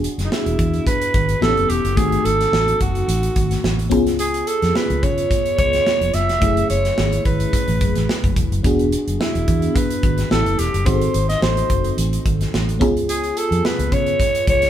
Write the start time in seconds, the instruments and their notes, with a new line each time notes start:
Already playing: fm electric piano B3 D4 F#4 G#4
0.04 closed hi-hat
0.18 fingered electric bass F#1, snare, closed hi-hat
0.25 alto saxophone D#4
0.31 alto saxophone E4, snare
0.46 fingered electric bass E1, closed hi-hat
0.59 fingered electric bass E2, kick, closed hi-hat
0.74 closed hi-hat
0.87 alto saxophone B4, kick, closed hi-hat
1.02 closed hi-hat
1.14 fingered electric bass G#1, kick, closed hi-hat
1.29 closed hi-hat
1.41 fingered electric bass A1, fm electric piano B3 C4 E4 G4, alto saxophone A4, snare
1.48 fm electric piano C#4
1.56 fingered electric bass F#1, closed hi-hat
1.70 fingered electric bass E1, alto saxophone G4, closed hi-hat
1.84 fingered electric bass F#1, closed hi-hat
1.96 fingered electric bass G#1, fm electric piano A3 C4 D#4 F#4, alto saxophone G#4, kick, closed hi-hat
2.12 closed hi-hat
2.25 fingered electric bass G#1, alto saxophone A4, closed hi-hat
2.41 snare, closed hi-hat
2.52 fingered electric bass A1, snare
2.68 closed hi-hat
2.81 fingered electric bass F#1, alto saxophone F#4, kick, closed hi-hat
2.95 closed hi-hat
3.08 fingered electric bass A1, closed hi-hat
3.23 closed hi-hat
3.36 fingered electric bass G#1, kick, closed hi-hat
3.51 snare, closed hi-hat
3.64 fingered electric bass A1, snare
3.79 closed hi-hat
3.89 fingered electric bass C#2, fm electric piano B3 C#4 F4 G#4, kick, closed hi-hat
4.07 snare, closed hi-hat
4.19 alto saxophone G#4, closed hi-hat
4.34 closed hi-hat
4.47 alto saxophone A4, closed hi-hat
4.62 fingered electric bass F2, snare, closed hi-hat
4.76 alto saxophone B4, snare
4.90 fingered electric bass C#2, closed hi-hat
5.03 fingered electric bass C#3, alto saxophone C#5, kick, closed hi-hat
5.18 closed hi-hat
5.31 kick, closed hi-hat
5.46 closed hi-hat
5.58 fingered electric bass C#2, alto saxophone C#5, kick, closed hi-hat
5.73 snare, closed hi-hat
5.87 snare
6.01 fingered electric bass F1, closed hi-hat
6.14 fingered electric bass F#1, alto saxophone E5, snare, closed hi-hat
6.29 fingered electric bass F1, snare, closed hi-hat
6.40 fingered electric bass F#1, fm electric piano A3 C#4 E4 G#4, kick, closed hi-hat
6.57 closed hi-hat
6.70 fingered electric bass F#1, alto saxophone C#5, closed hi-hat
6.85 snare, closed hi-hat
6.98 fingered electric bass G#1, snare
7.12 closed hi-hat
7.25 fingered electric bass G#1, alto saxophone B4, kick, closed hi-hat
7.40 closed hi-hat
7.53 kick, closed hi-hat
7.68 fingered electric bass A1, closed hi-hat
7.81 fingered electric bass F#1, kick, closed hi-hat
7.95 fingered electric bass A1, snare, closed hi-hat
8.09 snare
8.24 fingered electric bass F#1, kick, closed hi-hat
8.36 fingered electric bass E1, kick, closed hi-hat
8.52 fingered electric bass F#1, closed hi-hat
8.63 fingered electric bass E1, fm electric piano B3 D4 F#4 G#4, kick, closed hi-hat
8.79 closed hi-hat
8.92 closed hi-hat
9.07 fingered electric bass F#1, closed hi-hat
9.20 alto saxophone E4, snare
9.35 fingered electric bass E1, closed hi-hat
9.48 fingered electric bass E2, kick, closed hi-hat
9.62 closed hi-hat
9.76 alto saxophone B4, kick, closed hi-hat
9.90 closed hi-hat
10.03 fingered electric bass G#1, kick, closed hi-hat
10.18 snare, closed hi-hat
10.30 fingered electric bass A1, fm electric piano B3 C#4 E4 G4, alto saxophone A4, snare
10.46 fingered electric bass F#1, closed hi-hat
10.59 fingered electric bass E1, alto saxophone G4, snare, closed hi-hat
10.74 fingered electric bass F#1, closed hi-hat
10.85 fingered electric bass G#1, fm electric piano C4 D#4 F#4 G#4, alto saxophone C5, kick, closed hi-hat
10.94 fm electric piano A4
11.01 closed hi-hat
11.14 fingered electric bass G#1, closed hi-hat
11.29 alto saxophone D#5, snare, closed hi-hat
11.42 fingered electric bass A1, alto saxophone C5, snare
11.57 closed hi-hat
11.70 fingered electric bass F#1, kick, closed hi-hat
11.85 closed hi-hat
11.97 fingered electric bass A1, closed hi-hat
12.13 closed hi-hat
12.26 fingered electric bass G#1, kick, closed hi-hat
12.41 snare, closed hi-hat
12.53 fingered electric bass A1, snare
12.69 closed hi-hat
12.79 fingered electric bass C#2, fm electric piano B3 C#4 F4 G#4, kick, closed hi-hat
12.97 closed hi-hat
13.09 alto saxophone G#4, closed hi-hat
13.24 closed hi-hat
13.37 alto saxophone A4, closed hi-hat
13.51 fingered electric bass F2, closed hi-hat
13.65 alto saxophone B4, snare
13.79 fingered electric bass C#2, closed hi-hat
13.92 fingered electric bass C#3, alto saxophone C#5, kick, closed hi-hat
14.06 closed hi-hat
14.20 kick, closed hi-hat
14.35 closed hi-hat
14.47 fingered electric bass C#2, alto saxophone C#5, kick, closed hi-hat
14.62 snare, closed hi-hat